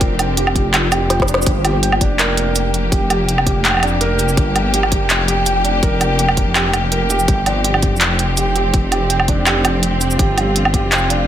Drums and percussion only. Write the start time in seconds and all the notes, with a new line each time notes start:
0.01 kick, closed hi-hat
0.19 closed hi-hat, low woodblock
0.37 closed hi-hat
0.47 low woodblock
0.56 kick, closed hi-hat
0.74 clap, closed hi-hat, low woodblock
0.92 closed hi-hat, low woodblock, shaker
1.10 snare, closed hi-hat
1.20 kick, snare
1.28 closed hi-hat, shaker
1.34 snare
1.42 shaker
1.46 kick, closed hi-hat
1.65 closed hi-hat, low woodblock
1.83 closed hi-hat
1.92 low woodblock
2.01 kick, closed hi-hat
2.19 clap, closed hi-hat, shaker
2.37 closed hi-hat
2.56 closed hi-hat, shaker
2.74 closed hi-hat
2.92 kick, closed hi-hat
3.10 closed hi-hat, low woodblock
3.29 closed hi-hat
3.38 low woodblock
3.46 kick, closed hi-hat
3.65 clap, closed hi-hat, low woodblock
3.68 low woodblock
3.71 low woodblock
3.74 low woodblock
3.77 low woodblock
3.80 closed hi-hat, low woodblock
3.83 low woodblock
3.88 shaker
4.01 closed hi-hat
4.19 closed hi-hat, shaker
4.29 shaker
4.37 kick, closed hi-hat
4.56 closed hi-hat, low woodblock
4.74 closed hi-hat
4.83 low woodblock
4.92 kick, closed hi-hat
5.10 clap, closed hi-hat, shaker
5.28 closed hi-hat
5.46 closed hi-hat, shaker
5.65 closed hi-hat
5.83 kick, closed hi-hat
6.01 closed hi-hat, low woodblock, shaker
6.19 closed hi-hat
6.29 low woodblock
6.37 kick, closed hi-hat
6.55 clap, closed hi-hat, low woodblock
6.74 closed hi-hat, low woodblock, shaker
6.92 closed hi-hat
7.10 closed hi-hat, shaker
7.19 shaker
7.28 kick, closed hi-hat
7.46 closed hi-hat, low woodblock
7.64 closed hi-hat
7.74 low woodblock
7.82 kick, closed hi-hat
7.96 shaker
8.01 clap, closed hi-hat
8.19 closed hi-hat
8.37 closed hi-hat, shaker
8.56 closed hi-hat
8.74 kick, closed hi-hat
8.92 closed hi-hat, low woodblock
9.10 closed hi-hat
9.20 low woodblock
9.28 kick, closed hi-hat
9.47 clap, closed hi-hat, low woodblock
9.65 closed hi-hat, low woodblock, shaker
9.83 closed hi-hat
10.01 closed hi-hat, shaker
10.11 shaker
10.19 kick, closed hi-hat
10.38 closed hi-hat, low woodblock
10.56 closed hi-hat
10.65 low woodblock
10.74 kick, closed hi-hat
10.92 clap, closed hi-hat, shaker
10.95 shaker
10.98 shaker
11.10 closed hi-hat